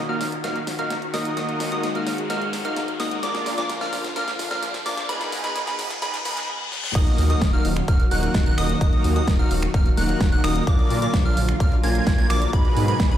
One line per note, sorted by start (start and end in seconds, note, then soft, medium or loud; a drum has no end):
0.00 0.14 D#1 loud
0.00 3.19 D#3 medium
0.00 3.19 F#4 medium
0.00 riser medium
0.09 0.24 A#3 medium
0.09 0.24 D#4 medium
0.09 0.24 F#4 medium
0.09 0.24 A#4 medium
0.09 0.24 F5 medium
0.09 0.24 F6 medium
0.21 0.38 D#1 loud
0.21 snare medium
0.21 open hi-hat loud
0.32 closed hi-hat soft
0.44 0.61 D#1 medium
0.44 0.59 A#3 medium
0.44 0.59 D#4 medium
0.44 0.59 F#4 medium
0.44 0.59 A#4 medium
0.44 0.59 F5 loud
0.44 0.59 F6 loud
0.44 snare medium
0.44 closed hi-hat medium
0.56 closed hi-hat soft
0.67 0.84 D#1 medium
0.67 snare medium
0.67 open hi-hat loud
0.79 0.94 A#3 medium
0.79 0.94 D#4 medium
0.79 0.94 F#4 medium
0.79 0.94 A#4 medium
0.79 0.94 F5 medium
0.79 0.94 F6 medium
0.79 closed hi-hat soft
0.90 1.07 D#1 medium
0.90 snare medium
0.90 closed hi-hat medium
1.02 closed hi-hat soft
1.14 1.31 D#1 medium
1.14 1.33 A#3 medium
1.14 1.33 D#4 medium
1.14 1.33 F#4 medium
1.14 1.33 A#4 medium
1.14 1.33 D#5 loud
1.14 1.33 D#6 loud
1.14 snare medium
1.14 open hi-hat loud
1.25 closed hi-hat medium
1.37 1.45 D#1 loud
1.37 3.21 G#3 medium
1.37 1.69 A#3 medium
1.37 1.69 D#4 medium
1.37 1.69 F#4 medium
1.37 1.69 A#4 medium
1.37 1.69 D#5 medium
1.37 1.69 D#6 medium
1.37 snare medium
1.37 closed hi-hat medium
1.49 closed hi-hat soft
1.60 1.77 D#2 loud
1.60 snare medium
1.60 open hi-hat loud
1.72 1.87 A#3 loud
1.72 1.87 D#4 medium
1.72 1.87 F#4 medium
1.72 1.87 A#4 medium
1.72 1.87 D#5 loud
1.72 1.87 D#6 loud
1.72 closed hi-hat medium
1.83 2.01 D#1 loud
1.83 snare medium
1.83 closed hi-hat medium
1.95 2.10 A#3 medium
1.95 2.10 D#4 medium
1.95 2.10 F#4 medium
1.95 2.10 A#4 medium
1.95 2.10 F5 medium
1.95 2.10 F6 medium
1.95 closed hi-hat soft
2.07 2.24 D#1 loud
2.07 snare medium
2.07 open hi-hat loud
2.18 closed hi-hat medium
2.30 2.47 D#1 medium
2.30 2.45 A#3 medium
2.30 2.45 D#4 medium
2.30 2.45 F#4 medium
2.30 2.45 A#4 medium
2.30 2.45 F5 loud
2.30 2.45 F6 loud
2.30 snare medium
2.30 closed hi-hat medium
2.42 closed hi-hat soft
2.53 2.70 D#1 medium
2.53 snare medium
2.53 open hi-hat loud
2.65 2.80 A#3 medium
2.65 2.80 D#4 medium
2.65 2.80 F#4 medium
2.65 2.80 A#4 medium
2.65 2.80 F5 medium
2.65 2.80 F6 medium
2.65 closed hi-hat soft
2.76 2.94 D#1 medium
2.76 snare medium
2.76 closed hi-hat medium
2.88 closed hi-hat soft
3.00 3.17 D#1 medium
3.00 3.19 A#3 medium
3.00 3.19 D#4 medium
3.00 3.19 F#4 medium
3.00 3.19 A#4 medium
3.00 3.19 D#5 loud
3.00 3.19 D#6 loud
3.00 snare medium
3.00 open hi-hat loud
3.11 closed hi-hat medium
3.23 3.32 A#1 loud
3.23 5.07 D3 medium
3.23 6.91 F3 medium
3.23 3.55 A#3 medium
3.23 3.55 D4 medium
3.23 3.55 F4 medium
3.23 5.07 F4 medium
3.23 3.55 A#4 medium
3.23 3.55 D5 medium
3.23 3.55 D6 medium
3.23 snare medium
3.23 closed hi-hat medium
3.35 snare medium
3.35 closed hi-hat soft
3.46 3.63 A#2 loud
3.46 snare medium
3.46 open hi-hat loud
3.58 3.73 A#3 loud
3.58 3.73 D4 medium
3.58 3.73 F4 medium
3.58 3.73 A#4 medium
3.58 3.73 D5 loud
3.58 3.73 D6 loud
3.58 snare medium
3.58 closed hi-hat medium
3.69 3.87 A#1 medium
3.69 snare medium
3.69 closed hi-hat medium
3.81 3.96 A#3 medium
3.81 3.96 D4 medium
3.81 3.96 F4 medium
3.81 3.96 A#4 medium
3.81 3.96 F5 medium
3.81 3.96 F6 medium
3.81 snare medium
3.93 4.10 A#1 loud
3.93 snare loud
3.93 open hi-hat loud
4.04 snare medium
4.04 closed hi-hat medium
4.16 4.33 A#1 medium
4.16 4.31 A#3 medium
4.16 4.31 D4 medium
4.16 4.31 F4 medium
4.16 4.31 A#4 medium
4.16 4.31 F5 loud
4.16 4.31 F6 loud
4.16 snare loud
4.16 closed hi-hat medium
4.28 snare medium
4.28 closed hi-hat soft
4.39 4.56 A#1 medium
4.39 snare medium
4.39 open hi-hat loud
4.51 4.66 A#3 medium
4.51 4.66 D4 medium
4.51 4.66 F4 medium
4.51 4.66 A#4 medium
4.51 4.66 F5 medium
4.51 4.66 F6 medium
4.51 snare medium
4.51 closed hi-hat medium
4.63 4.80 A#1 medium
4.63 snare loud
4.63 closed hi-hat medium
4.74 snare medium
4.74 closed hi-hat soft
4.86 5.03 A#1 medium
4.86 5.06 A#3 medium
4.86 5.06 D4 medium
4.86 5.06 F4 medium
4.86 5.06 A#4 medium
4.86 5.06 D5 loud
4.86 5.06 D6 loud
4.86 snare loud
4.86 open hi-hat loud
4.97 snare medium
4.97 closed hi-hat medium
5.09 5.18 G#1 loud
5.09 6.93 B2 medium
5.09 5.41 B3 medium
5.09 5.41 D#4 medium
5.09 5.41 G#4 medium
5.09 6.93 G#4 loud
5.09 5.41 A#4 medium
5.09 5.41 B4 medium
5.09 5.41 B5 medium
5.09 snare loud
5.09 closed hi-hat medium
5.21 snare medium
5.21 closed hi-hat soft
5.32 5.49 G#2 loud
5.32 snare loud
5.32 open hi-hat loud
5.44 5.59 B3 medium
5.44 5.59 D#4 medium
5.44 5.59 G#4 medium
5.44 5.59 A#4 medium
5.44 5.59 B4 loud
5.44 5.59 B5 loud
5.44 snare medium
5.44 closed hi-hat medium
5.56 5.73 G#1 medium
5.56 snare loud
5.56 closed hi-hat medium
5.67 5.82 B3 medium
5.67 5.82 D#4 medium
5.67 5.82 G#4 medium
5.67 5.82 A#4 medium
5.67 5.82 B4 medium
5.67 5.82 B5 medium
5.67 snare medium
5.67 closed hi-hat soft
5.79 5.96 G#1 loud
5.79 snare loud
5.79 open hi-hat loud
5.90 snare medium
5.90 closed hi-hat medium
6.02 6.19 G#1 loud
6.02 6.17 B3 medium
6.02 6.17 D#4 medium
6.02 6.17 G#4 medium
6.02 6.17 A#4 medium
6.02 6.17 B4 loud
6.02 6.17 B5 loud
6.02 snare loud
6.02 closed hi-hat medium
6.02 reverse cymbal medium
6.14 snare loud
6.14 closed hi-hat soft
6.25 6.42 D#2 medium
6.25 6.49 B3 medium
6.25 6.49 D#4 medium
6.25 6.49 G#4 medium
6.25 6.49 A#4 medium
6.25 6.49 B4 loud
6.25 6.49 B5 loud
6.25 snare loud
6.25 open hi-hat loud
6.37 snare medium
6.37 closed hi-hat medium
6.72 snare medium
6.84 snare medium
6.95 7.04 D#1 loud
6.95 10.63 D#3 medium
6.95 13.18 F#3 medium
6.95 7.27 A#3 medium
6.95 7.27 D#4 medium
6.95 10.63 F#4 medium
6.95 7.27 F#4 medium
6.95 7.27 A#4 medium
6.95 7.27 D#5 medium
6.95 7.27 D#6 medium
6.95 kick loud
6.95 closed hi-hat medium
6.95 crash loud
7.07 closed hi-hat soft
7.18 7.35 D#2 loud
7.18 open hi-hat loud
7.30 7.45 A#3 loud
7.30 7.45 D#4 medium
7.30 7.45 F#4 medium
7.30 7.45 A#4 medium
7.30 7.45 D#5 loud
7.30 7.45 D#6 loud
7.30 closed hi-hat medium
7.42 7.59 D#1 loud
7.42 kick loud
7.42 snare loud
7.42 closed hi-hat medium
7.53 7.68 A#3 medium
7.53 7.68 D#4 medium
7.53 7.68 F#4 medium
7.53 7.68 A#4 medium
7.53 7.68 F5 medium
7.53 7.68 F6 medium
7.65 7.82 D#1 medium
7.65 open hi-hat loud
7.76 finger snap medium
7.76 closed hi-hat medium
7.88 8.05 D#1 medium
7.88 8.03 A#3 medium
7.88 8.03 D#4 medium
7.88 8.03 F#4 medium
7.88 8.03 A#4 medium
7.88 8.03 F5 loud
7.88 8.03 F6 loud
7.88 kick loud
7.88 closed hi-hat medium
8.00 closed hi-hat soft
8.11 8.28 D#1 medium
8.11 8.43 A#3 medium
8.11 8.43 D#4 medium
8.11 8.43 F#4 medium
8.11 8.43 A#4 medium
8.11 8.43 F#5 loud
8.11 8.43 F#6 loud
8.11 open hi-hat loud
8.23 closed hi-hat medium
8.34 8.52 D#1 loud
8.34 kick loud
8.34 snare loud
8.34 closed hi-hat medium
8.46 8.55 A#3 medium
8.46 8.55 D#4 medium
8.46 8.55 F#4 medium
8.46 8.55 A#4 medium
8.46 8.55 F#5 loud
8.46 8.55 F#6 loud
8.46 closed hi-hat soft
8.58 8.75 D#1 loud
8.58 8.78 A#3 loud
8.58 8.78 D#4 medium
8.58 8.78 F#4 medium
8.58 8.78 A#4 medium
8.58 8.78 D#5 loud
8.58 8.78 D#6 loud
8.58 finger snap medium
8.58 open hi-hat loud
8.69 closed hi-hat medium
8.81 8.90 D#1 medium
8.81 9.13 A#3 medium
8.81 9.13 D#4 medium
8.81 9.13 F#4 medium
8.81 9.13 A#4 medium
8.81 9.13 D#5 medium
8.81 9.13 D#6 medium
8.81 kick loud
8.81 closed hi-hat medium
8.93 closed hi-hat soft
9.04 9.21 D#2 loud
9.04 open hi-hat loud
9.16 9.31 A#3 medium
9.16 9.31 D#4 medium
9.16 9.31 F#4 medium
9.16 9.31 A#4 medium
9.16 9.31 D#5 loud
9.16 9.31 D#6 loud
9.16 closed hi-hat medium
9.28 9.45 D#1 medium
9.28 kick loud
9.28 snare loud
9.28 closed hi-hat medium
9.39 9.54 A#3 medium
9.39 9.54 D#4 medium
9.39 9.54 F#4 medium
9.39 9.54 A#4 medium
9.39 9.54 F5 medium
9.39 9.54 F6 medium
9.39 closed hi-hat soft
9.51 9.68 D#1 loud
9.51 open hi-hat loud
9.63 finger snap medium
9.63 closed hi-hat medium
9.74 9.91 D#1 medium
9.74 9.89 A#3 medium
9.74 9.89 D#4 medium
9.74 9.89 F#4 medium
9.74 9.89 A#4 medium
9.74 9.89 F5 medium
9.74 9.89 F6 loud
9.74 kick loud
9.74 closed hi-hat medium
9.86 closed hi-hat soft
9.97 10.14 D#1 medium
9.97 10.29 A#3 medium
9.97 10.29 D#4 medium
9.97 10.29 F#4 medium
9.97 10.29 A#4 medium
9.97 10.29 F#5 medium
9.97 10.29 F#6 loud
9.97 snare soft
9.97 open hi-hat loud
10.09 closed hi-hat medium
10.21 10.38 D#1 loud
10.21 kick loud
10.21 snare loud
10.21 closed hi-hat medium
10.32 10.41 A#3 loud
10.32 10.41 D#4 medium
10.32 10.41 F#4 medium
10.32 10.41 A#4 medium
10.32 10.41 F#5 loud
10.32 10.41 F#6 loud
10.32 closed hi-hat soft
10.44 10.61 D#1 loud
10.44 10.64 A#3 medium
10.44 10.64 D#4 medium
10.44 10.64 F#4 medium
10.44 10.64 A#4 medium
10.44 10.64 D#5 loud
10.44 10.64 D#6 loud
10.44 finger snap medium
10.44 open hi-hat loud
10.56 closed hi-hat medium
10.67 10.76 A#1 loud
10.67 12.51 D3 medium
10.67 10.99 A#3 medium
10.67 10.99 D4 medium
10.67 10.99 F4 medium
10.67 12.51 F4 loud
10.67 10.99 A#4 medium
10.67 10.99 D5 medium
10.67 10.99 D6 medium
10.67 kick loud
10.67 closed hi-hat medium
10.79 closed hi-hat soft
10.90 11.07 A#2 loud
10.90 open hi-hat loud
11.02 11.17 A#3 loud
11.02 11.17 D4 medium
11.02 11.17 F4 medium
11.02 11.17 A#4 medium
11.02 11.17 D5 loud
11.02 11.17 D6 loud
11.02 closed hi-hat medium
11.14 11.31 A#1 medium
11.14 kick loud
11.14 snare loud
11.14 closed hi-hat medium
11.25 11.40 A#3 medium
11.25 11.40 D4 medium
11.25 11.40 F4 medium
11.25 11.40 A#4 medium
11.25 11.40 F5 medium
11.25 11.40 F6 medium
11.37 11.54 A#1 loud
11.37 open hi-hat loud
11.49 finger snap medium
11.49 closed hi-hat medium
11.60 11.77 A#1 medium
11.60 11.75 A#3 medium
11.60 11.75 D4 medium
11.60 11.75 F4 medium
11.60 11.75 A#4 medium
11.60 11.75 F5 loud
11.60 11.75 F6 medium
11.60 kick loud
11.60 closed hi-hat medium
11.72 closed hi-hat soft
11.83 12.01 A#1 medium
11.83 12.16 A#3 medium
11.83 12.16 D4 medium
11.83 12.16 F4 medium
11.83 12.16 A#4 medium
11.83 12.16 G#5 loud
11.83 12.16 G#6 medium
11.83 open hi-hat loud
11.95 closed hi-hat soft
12.07 12.24 A#1 loud
12.07 kick loud
12.07 snare loud
12.07 closed hi-hat medium
12.18 12.27 A#3 medium
12.18 12.27 D4 medium
12.18 12.27 F4 medium
12.18 12.27 A#4 medium
12.18 12.27 G#5 loud
12.18 12.27 G#6 loud
12.18 closed hi-hat soft
12.30 12.47 A#1 loud
12.30 12.50 A#3 loud
12.30 12.50 D4 medium
12.30 12.50 F4 medium
12.30 12.50 A#4 medium
12.30 12.50 D5 loud
12.30 12.50 D6 loud
12.30 finger snap medium
12.30 open hi-hat loud
12.42 closed hi-hat medium
12.53 12.62 G#1 loud
12.53 13.18 B2 medium
12.53 12.85 B3 medium
12.53 12.85 D#4 medium
12.53 12.85 G#4 medium
12.53 13.18 G#4 medium
12.53 12.85 A#4 medium
12.53 12.85 B4 loud
12.53 12.85 B5 medium
12.53 kick loud
12.53 closed hi-hat medium
12.65 closed hi-hat soft
12.77 12.94 G#2 loud
12.77 open hi-hat loud
12.88 13.03 B3 loud
12.88 13.03 D#4 medium
12.88 13.03 G#4 medium
12.88 13.03 A#4 medium
12.88 13.03 B4 loud
12.88 13.03 B5 loud
12.88 closed hi-hat medium
13.00 13.17 G#1 loud
13.00 kick loud
13.00 snare loud
13.00 closed hi-hat medium
13.11 13.18 B3 medium
13.11 13.18 D#4 medium
13.11 13.18 G#4 medium
13.11 13.18 A#4 medium
13.11 13.18 B4 medium
13.11 13.18 B5 medium
13.11 closed hi-hat soft